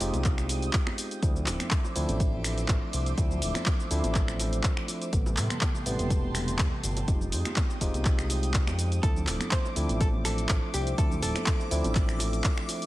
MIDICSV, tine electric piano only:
0, 0, Header, 1, 2, 480
1, 0, Start_track
1, 0, Key_signature, -1, "minor"
1, 0, Tempo, 487805
1, 1205, Time_signature, 4, 2, 24, 8
1, 12655, End_track
2, 0, Start_track
2, 0, Title_t, "Tine electric piano"
2, 0, Program_c, 0, 4
2, 5, Note_on_c, 0, 56, 99
2, 6, Note_on_c, 0, 60, 91
2, 6, Note_on_c, 0, 63, 88
2, 7, Note_on_c, 0, 65, 93
2, 7, Note_on_c, 0, 67, 108
2, 1179, Note_off_c, 0, 56, 0
2, 1179, Note_off_c, 0, 60, 0
2, 1180, Note_off_c, 0, 63, 0
2, 1180, Note_off_c, 0, 65, 0
2, 1180, Note_off_c, 0, 67, 0
2, 1205, Note_on_c, 0, 53, 76
2, 1205, Note_on_c, 0, 57, 70
2, 1206, Note_on_c, 0, 60, 71
2, 1206, Note_on_c, 0, 62, 69
2, 1207, Note_on_c, 0, 64, 85
2, 1899, Note_off_c, 0, 53, 0
2, 1899, Note_off_c, 0, 57, 0
2, 1899, Note_off_c, 0, 60, 0
2, 1899, Note_off_c, 0, 62, 0
2, 1900, Note_off_c, 0, 64, 0
2, 1924, Note_on_c, 0, 53, 98
2, 1925, Note_on_c, 0, 57, 93
2, 1925, Note_on_c, 0, 60, 92
2, 1926, Note_on_c, 0, 62, 94
2, 1926, Note_on_c, 0, 64, 110
2, 3099, Note_off_c, 0, 53, 0
2, 3099, Note_off_c, 0, 57, 0
2, 3099, Note_off_c, 0, 60, 0
2, 3099, Note_off_c, 0, 62, 0
2, 3100, Note_off_c, 0, 64, 0
2, 3124, Note_on_c, 0, 53, 78
2, 3125, Note_on_c, 0, 57, 69
2, 3125, Note_on_c, 0, 60, 70
2, 3126, Note_on_c, 0, 62, 71
2, 3126, Note_on_c, 0, 64, 87
2, 3819, Note_off_c, 0, 53, 0
2, 3819, Note_off_c, 0, 57, 0
2, 3819, Note_off_c, 0, 60, 0
2, 3819, Note_off_c, 0, 62, 0
2, 3819, Note_off_c, 0, 64, 0
2, 3845, Note_on_c, 0, 53, 100
2, 3846, Note_on_c, 0, 57, 94
2, 3846, Note_on_c, 0, 60, 91
2, 3847, Note_on_c, 0, 62, 94
2, 3847, Note_on_c, 0, 64, 107
2, 5019, Note_off_c, 0, 53, 0
2, 5019, Note_off_c, 0, 57, 0
2, 5019, Note_off_c, 0, 60, 0
2, 5020, Note_off_c, 0, 62, 0
2, 5020, Note_off_c, 0, 64, 0
2, 5045, Note_on_c, 0, 48, 79
2, 5046, Note_on_c, 0, 52, 74
2, 5046, Note_on_c, 0, 55, 71
2, 5047, Note_on_c, 0, 57, 71
2, 5047, Note_on_c, 0, 59, 88
2, 5739, Note_off_c, 0, 48, 0
2, 5739, Note_off_c, 0, 52, 0
2, 5739, Note_off_c, 0, 55, 0
2, 5740, Note_off_c, 0, 57, 0
2, 5740, Note_off_c, 0, 59, 0
2, 5765, Note_on_c, 0, 48, 95
2, 5766, Note_on_c, 0, 52, 91
2, 5766, Note_on_c, 0, 55, 88
2, 5767, Note_on_c, 0, 57, 87
2, 5767, Note_on_c, 0, 59, 108
2, 6939, Note_off_c, 0, 48, 0
2, 6939, Note_off_c, 0, 52, 0
2, 6939, Note_off_c, 0, 55, 0
2, 6940, Note_off_c, 0, 57, 0
2, 6940, Note_off_c, 0, 59, 0
2, 6965, Note_on_c, 0, 56, 76
2, 6966, Note_on_c, 0, 60, 71
2, 6966, Note_on_c, 0, 63, 69
2, 6967, Note_on_c, 0, 65, 68
2, 6967, Note_on_c, 0, 67, 84
2, 7659, Note_off_c, 0, 56, 0
2, 7659, Note_off_c, 0, 60, 0
2, 7660, Note_off_c, 0, 63, 0
2, 7660, Note_off_c, 0, 65, 0
2, 7660, Note_off_c, 0, 67, 0
2, 7685, Note_on_c, 0, 56, 98
2, 7686, Note_on_c, 0, 60, 91
2, 7686, Note_on_c, 0, 63, 92
2, 7687, Note_on_c, 0, 65, 88
2, 7687, Note_on_c, 0, 67, 107
2, 8859, Note_off_c, 0, 56, 0
2, 8859, Note_off_c, 0, 60, 0
2, 8859, Note_off_c, 0, 63, 0
2, 8860, Note_off_c, 0, 65, 0
2, 8860, Note_off_c, 0, 67, 0
2, 8885, Note_on_c, 0, 53, 78
2, 8886, Note_on_c, 0, 57, 69
2, 8887, Note_on_c, 0, 60, 70
2, 8887, Note_on_c, 0, 62, 69
2, 8887, Note_on_c, 0, 64, 88
2, 9579, Note_off_c, 0, 53, 0
2, 9579, Note_off_c, 0, 57, 0
2, 9580, Note_off_c, 0, 60, 0
2, 9580, Note_off_c, 0, 62, 0
2, 9580, Note_off_c, 0, 64, 0
2, 9605, Note_on_c, 0, 53, 99
2, 9605, Note_on_c, 0, 57, 92
2, 9606, Note_on_c, 0, 60, 94
2, 9606, Note_on_c, 0, 62, 89
2, 9606, Note_on_c, 0, 64, 106
2, 10779, Note_off_c, 0, 53, 0
2, 10779, Note_off_c, 0, 57, 0
2, 10779, Note_off_c, 0, 60, 0
2, 10780, Note_off_c, 0, 62, 0
2, 10780, Note_off_c, 0, 64, 0
2, 10805, Note_on_c, 0, 53, 78
2, 10805, Note_on_c, 0, 57, 72
2, 10806, Note_on_c, 0, 60, 69
2, 10806, Note_on_c, 0, 62, 69
2, 10807, Note_on_c, 0, 64, 87
2, 11499, Note_off_c, 0, 53, 0
2, 11499, Note_off_c, 0, 57, 0
2, 11499, Note_off_c, 0, 60, 0
2, 11500, Note_off_c, 0, 62, 0
2, 11500, Note_off_c, 0, 64, 0
2, 11524, Note_on_c, 0, 53, 98
2, 11525, Note_on_c, 0, 57, 92
2, 11525, Note_on_c, 0, 60, 96
2, 11526, Note_on_c, 0, 62, 95
2, 11526, Note_on_c, 0, 64, 113
2, 12655, Note_off_c, 0, 53, 0
2, 12655, Note_off_c, 0, 57, 0
2, 12655, Note_off_c, 0, 60, 0
2, 12655, Note_off_c, 0, 62, 0
2, 12655, Note_off_c, 0, 64, 0
2, 12655, End_track
0, 0, End_of_file